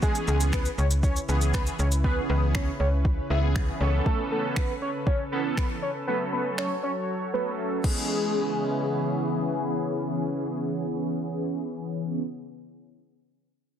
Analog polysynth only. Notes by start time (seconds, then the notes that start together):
0.02 E3 B3 C#4 G#4
1.28 E3 B3 C#4 G#4
2.04 E3 B3 C#4 G#4
3.30 E3 B3 C#4 G#4
3.81 E3 B3 C#4 A4
5.32 E3 B3 C#4 A4
6.08 F#3 A3 C#4 A4
7.34 F#3 A3 C#4 A4
7.84 E3 B3 C#4 G#4